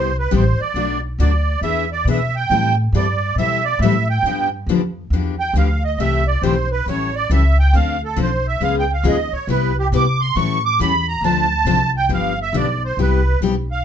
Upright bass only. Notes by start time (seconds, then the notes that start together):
Already playing: C2
0.32 A1
0.59 muted upright bass stroke
0.74 B1
1.18 D2
1.61 E2
2.05 B2
2.50 A2
2.92 G2
3.36 B2
3.79 A2
4.23 G2
4.66 F2
5.10 E2
5.53 D2
5.98 C2
6.42 B1
6.86 A1
7.30 C#2
7.73 D2
8.17 B1
8.60 C#2
9.04 D#2
9.33 muted upright bass stroke
9.47 C2
9.92 C3
10.36 A2
10.79 E2
11.21 D2
11.65 C2
12.09 G1
12.53 B1
12.97 C2
13.41 B1